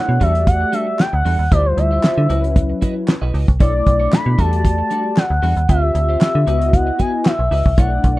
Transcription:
Already playing: A3 D4 E4 C#5 F#5
0.08 B2, muted clean electric guitar stroke
0.20 E2 G3 A3 D4 F#4 G4 A4 D5 E5, kick, closed hi-hat
0.34 muted clean electric guitar stroke, closed hi-hat
0.47 F#5, kick, closed hi-hat
0.61 muted clean electric guitar stroke
0.72 G3 D4 F#4 A4 E5, closed hi-hat
0.87 muted clean electric guitar stroke
0.99 G5, muted clean electric guitar stroke, snare, clap, closed hi-hat
1.13 D2 F#5, muted clean electric guitar stroke
1.25 E2 G3 D4 F#4 A4 F#5, open hi-hat
1.39 D#2, muted clean electric guitar stroke
1.51 D2 G3 E4 F4 G4 B4 C5 D5 E5, kick, closed hi-hat
1.58 C5
1.65 C5, muted clean electric guitar stroke
1.77 D2 E5, muted clean electric guitar stroke, closed hi-hat
1.91 F4 G4 C5 E5
2.03 D3, muted clean electric guitar stroke, snare, clap, closed hi-hat
2.17 D3, muted clean electric guitar stroke
2.29 C#2 F#3 C#4 E4 F#4 B4 D#5, closed hi-hat
2.44 muted clean electric guitar stroke, closed hi-hat
2.56 kick, closed hi-hat
2.70 muted clean electric guitar stroke
2.82 E4 F#4 B4 D#5, kick, closed hi-hat
2.96 muted clean electric guitar stroke
3.08 muted clean electric guitar stroke, snare, clap, closed hi-hat
3.22 B1 E4 F#4 B4 D#5
3.34 C#2 E4 F#4 B4 D#5, open hi-hat
3.48 C2, muted clean electric guitar stroke, kick, closed hi-hat
3.60 B1 A3 D4 E4 A4 C#5 D5, kick, closed hi-hat
3.74 muted clean electric guitar stroke
3.86 B1, muted clean electric guitar stroke, kick, closed hi-hat
4.00 D4 E4 A4 C#5
4.12 B2 B5, snare, clap, closed hi-hat
4.26 B2, muted clean electric guitar stroke
4.38 E2 G3 A3 D4 F#4 G4 A4 D5 A5, kick, closed hi-hat
4.52 muted clean electric guitar stroke, closed hi-hat
4.65 kick, closed hi-hat
4.78 muted clean electric guitar stroke
4.90 G3 D4 F#4 A4, closed hi-hat
5.04 muted clean electric guitar stroke
5.16 F#5, muted clean electric guitar stroke, snare, clap, closed hi-hat
5.30 D2, muted clean electric guitar stroke
5.42 E2 G3 D4 F#4 A4, open hi-hat
5.56 D#2, muted clean electric guitar stroke, closed hi-hat
5.69 D2 C4 F4 G4 C5 E5, kick, closed hi-hat
5.83 muted clean electric guitar stroke
5.95 D2, muted clean electric guitar stroke, closed hi-hat
6.09 F4 G4 C5 E5
6.21 D3, snare, clap, closed hi-hat
6.35 D3, muted clean electric guitar stroke
6.47 C#2 B3 E4 F#4 B4 D#5, closed hi-hat
6.61 muted clean electric guitar stroke, closed hi-hat
6.73 F#5, kick, closed hi-hat
6.87 muted clean electric guitar stroke
6.99 E4 F#4 B4 D#5 G#5, kick, closed hi-hat
7.25 E5, muted clean electric guitar stroke, snare, clap, closed hi-hat
7.39 B1, muted clean electric guitar stroke
7.51 C#2 E4 F#4 B4 D#5, open hi-hat
7.65 C2, muted clean electric guitar stroke, kick
7.77 B1 A3 D4 E4 A4 C#5 D5 F#5, kick, closed hi-hat
7.91 muted clean electric guitar stroke
8.03 B1, muted clean electric guitar stroke, kick, closed hi-hat

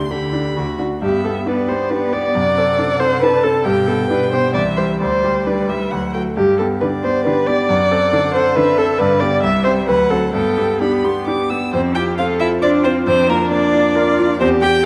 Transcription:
Already playing: D2 D4 G4 C6
0.10 D3 G4 B5
0.33 D4
0.56 D2 D3 F#4
0.79 D4 F#4
1.02 G2 B3 G4 E5
1.24 B3 G4 A4
1.46 B3 D4 G4 B4 D5
1.68 B3 G4 C5
1.90 B3 D4 G4 B4
2.12 B3 G4 D5
2.35 F#2 C3 F#5
2.57 C4 A4
2.79 D4 A4
3.00 C4 A4 C5
3.21 D4 A4 B4 A5
3.44 C4 A4
3.65 G2 B2 G4 G5
3.87 B3 G4 A4
4.10 B2 D4 G4 B4
4.32 B3 G4 C5
4.54 C2 E3 D5 E5
4.77 G3 G4 C5
5.00 D2 G3 C5 D5
5.24 G3 G4
5.46 G3 D4 G4 B4 D5
5.69 G3 G4 E5
5.91 D2 F#3 F#5
6.13 A3 F#4 G5
6.36 G2 G4
6.59 B3 G4 A4
6.81 D3 D4 G4 B4 D5
7.03 B3 G4 C5
7.25 D3 D4 G4 B4
7.47 B3 G4 D5
7.69 F#2 F#5
7.91 C4 A4
8.13 D3 D4 A4
8.34 C4 A4 C5
8.56 D3 D4 A4 B4 E5
8.78 C4 A4
8.99 G2 D3 B4 D5
9.20 B3 G4 D5
9.42 C2 G3 E5
9.65 C4 G4 C5
9.87 D2 F#3 B4 F#5
10.10 C4 F#4 A4
10.33 G2 B3 A4 G5
10.58 B3 G4
10.80 B3 D4 G4 B5
11.04 B3 G4 C6
11.27 D4 G4 D6
11.50 B3 G4 E6
11.72 F2 C4 C5
11.95 F4 G4 G5
12.17 C4 F4 A4 F5
12.39 E4 F4 E5
12.62 D4 F4 C5 D5
12.83 C4 F4 C5
13.06 F2 C4 D4 C5
13.28 A#3 F4 A#4
13.51 A#3 D4 D5
13.73 F4
13.95 F4 A#4
14.18 F4
14.40 E2 C4 G4 C5
14.62 G4 G5

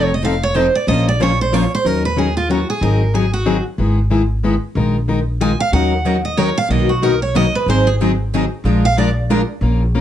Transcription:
Already playing: F1 F3 C4 D#4 A4
0.03 C#5
0.14 D#5
0.24 F3 C4 D#4 A4 F5
0.43 C#5
0.55 F3 C4 D#4 A4 C5
0.75 D5
0.87 A#1 F3 A#3 C#4 F4 C5 D#5
1.09 D5
1.20 F3 A#3 C#4 F4 C5 C#5
1.41 C5
1.52 F3 A#3 C#4 F4 C5 C#5
1.75 C5
1.84 D#2 D#3 F#3 C#4 D#4 A#4
2.05 B4
2.16 D#3 F#3 C#4 D#4 G#4 A#4
2.37 F4
2.49 D#3 F#3 C#4 D#4 F#4 A#4
2.70 G#4
2.81 G#1 D#3 F#3 C4 D#4 G#4 A#4
3.14 D#3 F#3 C4 D#4 G#4
3.33 F#4
3.46 D#3 F#3 C4 D#4 G#4
3.78 G#1 D#3 G#3 B3 E4 G#4
4.10 D#3 G#3 B3 E4 G#4
4.43 D#3 G#3 B3 E4 G#4
4.75 A#1 D#3 G#3 D#4 F4 A#4
5.08 D#3 G#3 D#4 F4 A#4
5.41 D#3 G#3 D#4 F4 A#4 G#5
5.60 F5
5.72 D#2 D#3 F#3 C#4 D#4 A#4 F#5
6.05 D#3 F#3 C#4 D#4 A#4
6.25 D#5
6.37 D#3 F#3 C#4 D#4 A#4 C#5
6.58 F5
6.69 B1 B2 D#3 F#3 A#3 B3 D#4 F#4 A#4 D#5
6.89 F#4
7.02 B2 D#3 F#3 A#3 B3 D#4 F#4 A#4
7.22 C#5
7.35 B2 D#3 F#3 A#3 B3 D#4 F#4 A#4 D#5
7.55 B4
7.66 G#1 D#3 F#3 C4 D#4 G#4 C5
7.87 G#4
8.01 D#3 F#3 C4 D#4 G#4
8.34 D#3 F#3 C4 D#4 G#4
8.64 A#1 F3 G#3 D4 F4 A#4
8.85 F5
8.97 F3 G#3 D4 F4 A#4 D5
9.30 F3 G#3 D4 F4 A#4
9.61 A#1 F3 A#3 C#4 F4 A#4
9.95 F3 A#3 C#4 F4 A#4

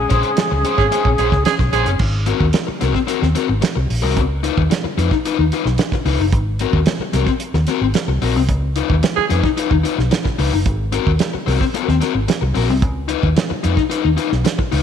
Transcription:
Already playing: C#3 G#3 C#4 G#4
0.10 A#1 C#4 G#4 C5, kick, closed hi-hat
0.23 closed hi-hat
0.37 muted overdriven electric guitar stroke, snare, closed hi-hat
0.51 C#2, muted overdriven electric guitar stroke
0.65 C#4 G#4 C5, closed hi-hat
0.78 G#1 G#4, muted overdriven electric guitar stroke, kick, snare
0.92 C#4 G#4 C5, closed hi-hat
1.05 A#1, muted overdriven electric guitar stroke, kick
1.18 A#1 C#4 G#4 C5, closed hi-hat
1.32 C#2, muted overdriven electric guitar stroke, kick, snare
1.45 G#4, muted overdriven electric guitar stroke, snare, closed hi-hat
1.59 B1, muted overdriven electric guitar stroke, kick, snare
1.72 A#1 C#4 G#4 C5, closed hi-hat
1.86 F#1, muted overdriven electric guitar stroke, closed hi-hat
1.99 G#1, kick, crash
2.26 C4 F#4 A#4, closed hi-hat
2.41 D#2, kick
2.53 muted overdriven electric guitar stroke, snare, closed hi-hat
2.67 muted overdriven electric guitar stroke, muted fingered electric bass stroke
2.81 C2 C4 F#4 A#4, snare, closed hi-hat
2.94 muted overdriven electric guitar stroke, kick, snare
3.07 C4 F#4 A#4, closed hi-hat
3.22 D#2, muted overdriven electric guitar stroke, snare
3.35 C4 F#4 A#4, snare, closed hi-hat
3.48 G#1, muted overdriven electric guitar stroke
3.61 muted overdriven electric guitar stroke, snare, closed hi-hat
3.76 C2, muted overdriven electric guitar stroke
3.90 A#1, open hi-hat
4.02 C2 C4 F#4 A#4
4.17 C#2, kick, closed hi-hat
4.43 D#4 F4 B4, closed hi-hat
4.58 D#2, kick
4.70 muted overdriven electric guitar stroke, snare, closed hi-hat
4.84 muted fingered electric bass stroke, muted overdriven electric guitar stroke
4.98 F2 D#4 F4 B4, closed hi-hat
5.11 muted overdriven electric guitar stroke, kick, snare
5.25 D#4 F4 B4, closed hi-hat
5.39 D#2, muted overdriven electric guitar stroke
5.52 D#4 F4 B4, closed hi-hat
5.65 B1, muted overdriven electric guitar stroke, snare
5.78 muted overdriven electric guitar stroke, snare, closed hi-hat
5.92 muted overdriven electric guitar stroke, kick, snare
6.05 C#2 D#4 F4 B4, open hi-hat
6.19 F#1, muted overdriven electric guitar stroke
6.33 G#1, kick, closed hi-hat
6.59 C4 F#4 A#4, closed hi-hat
6.73 D#2, kick
6.86 muted overdriven electric guitar stroke, snare, closed hi-hat
7.00 muted fingered electric bass stroke, muted overdriven electric guitar stroke
7.13 C2 C4 F#4 A#4, snare, closed hi-hat
7.26 muted overdriven electric guitar stroke, kick, snare
7.40 closed hi-hat
7.54 D#2, muted overdriven electric guitar stroke, snare
7.67 C4 F#4 A#4, snare, closed hi-hat
7.81 G#1, muted overdriven electric guitar stroke
7.94 muted overdriven electric guitar stroke, snare, closed hi-hat
8.08 C2, muted overdriven electric guitar stroke
8.22 A#1 C4 F#4 A#4, open hi-hat
8.36 C2, muted overdriven electric guitar stroke
8.49 C#2, kick, closed hi-hat
8.76 D#4 F4 B4, closed hi-hat
8.90 D#2, kick
9.03 muted overdriven electric guitar stroke, snare, closed hi-hat
9.16 G#4, muted overdriven electric guitar stroke, muted fingered electric bass stroke
9.30 F2 D#4 F4 B4, closed hi-hat
9.44 muted overdriven electric guitar stroke, kick, snare
9.57 D#4 F4 B4, closed hi-hat
9.71 D#2, muted overdriven electric guitar stroke, kick
9.83 D#4 F4 B4, closed hi-hat
9.98 B1, muted overdriven electric guitar stroke, snare
10.11 muted overdriven electric guitar stroke, snare, closed hi-hat
10.25 muted overdriven electric guitar stroke, kick, snare
10.39 C#2 D#4 F4 B4, open hi-hat
10.53 F#1, muted overdriven electric guitar stroke
10.66 G#1, kick, closed hi-hat
10.92 C4 F#4 A#4, closed hi-hat
11.07 D#2, kick
11.19 muted overdriven electric guitar stroke, snare, closed hi-hat
11.34 muted overdriven electric guitar stroke, muted fingered electric bass stroke
11.46 C2 C4 F#4 A#4, snare, open hi-hat
11.60 muted overdriven electric guitar stroke, kick, snare
11.74 C4 F#4 A#4, closed hi-hat
11.88 D#2, muted overdriven electric guitar stroke, snare
12.00 C4 F#4 A#4, snare, closed hi-hat
12.15 G#1, muted overdriven electric guitar stroke
12.28 muted overdriven electric guitar stroke, snare, closed hi-hat
12.41 C2, muted overdriven electric guitar stroke
12.54 A#1 C4 F#4 A#4, open hi-hat
12.68 C2, muted overdriven electric guitar stroke
12.82 C#2, kick, closed hi-hat
13.08 D#4 F4 B4, closed hi-hat
13.23 D#2, kick
13.37 muted overdriven electric guitar stroke, snare, closed hi-hat
13.50 muted overdriven electric guitar stroke, muted fingered electric bass stroke
13.63 F2 D#4 F4 B4, closed hi-hat
13.76 muted overdriven electric guitar stroke, kick, snare
13.90 D#4 F4 B4, closed hi-hat
14.04 D#2, muted overdriven electric guitar stroke
14.17 D#4 F4 B4, closed hi-hat
14.31 B1, muted overdriven electric guitar stroke, snare
14.45 muted overdriven electric guitar stroke, snare, closed hi-hat
14.58 muted overdriven electric guitar stroke, kick
14.72 C#2 D#4 F4 B4, open hi-hat

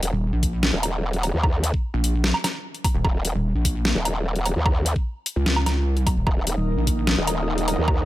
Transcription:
Already playing: D#1
0.03 closed hi-hat
0.13 D#1
0.33 A#1
0.43 kick, closed hi-hat
0.63 snare
0.73 D#1
0.83 closed hi-hat, low woodblock
1.13 closed hi-hat
1.23 open hi-hat, low woodblock
1.34 D#2
1.43 kick, low woodblock
1.64 closed hi-hat
1.74 kick
1.94 A#1
2.04 closed hi-hat
2.24 snare
2.34 low woodblock
2.44 snare, closed hi-hat, low woodblock
2.74 closed hi-hat
2.84 kick, open hi-hat, low woodblock
2.95 D#1
3.05 D#1, kick, low woodblock
3.25 closed hi-hat
3.35 D#1
3.55 A#1
3.65 kick, closed hi-hat
3.85 snare
3.95 D#1
4.05 closed hi-hat, low woodblock
4.36 closed hi-hat
4.46 open hi-hat, low woodblock
4.56 D#2
4.66 kick, low woodblock
4.86 closed hi-hat
4.96 kick
5.26 closed hi-hat
5.36 C#2
5.46 snare
5.56 low woodblock
5.66 snare, closed hi-hat, low woodblock
5.92 C2
5.97 closed hi-hat
6.07 kick, open hi-hat, low woodblock
6.17 D#1
6.27 D#1 D#3 A#3 A#4 D#5, kick, low woodblock
6.47 closed hi-hat
6.57 D#1
6.77 A#1
6.87 kick, closed hi-hat
7.07 snare
7.17 D#1
7.27 closed hi-hat, low woodblock
7.58 closed hi-hat
7.68 open hi-hat, low woodblock
7.78 D#2
7.88 kick, low woodblock

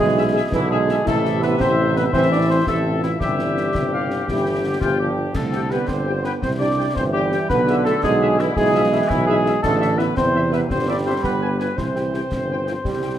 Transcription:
Already playing: E3 G#3
0.00 B1 G#4
0.16 D4 E4 G#4 E5
0.33 D4 E4 G#4 E5
0.51 B1 D3 E3 E4, concert bass drum, snare
0.70 G#3 D4 E4 G#4 E5
0.87 D4 E4 G#4 E5, snare
1.05 A1 C3 A3 C4 E4 A4 E5, concert bass drum, snare, crash
1.25 snare
1.42 B3 B4, snare
1.59 A1 C4 E4 C5 E5, concert bass drum, snare
1.96 B3 B4, snare
2.12 A1 E3 C4 E4 C5 E5, concert bass drum, snare
2.31 D4 D5
2.49 C4 C5
2.66 A1 C3 A3 C4 E4 A4 E5, concert bass drum, snare
2.95 F4
3.02 E3 E4, snare
3.20 G1 E3 G3 C4 E4 G4 E5, concert bass drum, snare
3.39 snare
3.57 snare
3.74 G1 C3, concert bass drum, snare
3.93 F5
4.10 D3, snare
4.27 G1 E3 B3 D4 G4 G5, concert bass drum, snare
4.64 D3
4.81 G1 E3 F3 B3 D4 F4 G4 G5, concert bass drum, snare
4.99 F3 G3 G4
5.34 C2 D3 A3 A4, concert bass drum, snare, crash
5.52 C4 E4 G4 G5, snare
5.70 B3 C4 E4 G4 B4 G5, snare
5.87 G1 C4 C5, concert bass drum, snare
6.05 C4 E4 G4 G5
6.24 B3 C4 E4 G4 B4 G5, snare
6.42 C2 C3 C4 C5, concert bass drum, snare
6.59 C4 D4 E4 G4 D5 G5
6.78 C4 E4 G4 G5
6.95 G1 E3 C4 C5, concert bass drum, snare
7.13 G3 C4 E4 G4 G5
7.31 C4 E4 G4 G5, snare
7.49 B1 D3 B3 B4, concert bass drum, snare
7.67 D4 E4 G#4 E5, snare
7.85 A3 D4 E4 G#4 A4 E5, snare
8.03 B1 G#3 G#4, concert bass drum, snare
8.21 D4 E4 G#4 E5
8.38 E3 D4 E4 G#4 E5, snare
8.56 B1 E3 G#3 G#4, concert bass drum, snare
8.73 F3 D4 E4 G#4 E5
8.91 E3 D4 E4 G#4 E5
9.09 B1 E3 E4, concert bass drum, snare
9.26 G#3 D4 E4 G#4 E5
9.45 D4 E4 G#4 E5, snare
9.62 A1 D3 A3 A4, concert bass drum, snare, crash
9.80 C4 E4 E5, snare
9.97 B3 C4 E4 B4 E5, snare
10.16 E2 C3 C4 C5, concert bass drum, snare
10.33 C4 E4 E5
10.52 B3 C4 E4 B4 E5, snare
10.69 G1 G3 C4 C5, concert bass drum, snare
10.87 C4 D4 E4 G4 D5 E5
11.05 C4 E4 G4 C5 E5
11.24 G1 B3 B4, concert bass drum, snare
11.41 D4 F4 G4 G#5
11.59 B3 D4 F4 G4 B4 G#5, snare
11.77 C2 E3 C4 C5, concert bass drum, snare
11.95 C4 E4 G4 G5, snare
12.13 C4 E4 G4 G5, snare
12.31 G1 E3, concert bass drum, snare
12.49 C4 E4 G4 G5
12.66 F3 C4 E4 G4 G5, snare
12.84 C2 G3, concert bass drum, snare
13.03 C4 E4 G4 G5

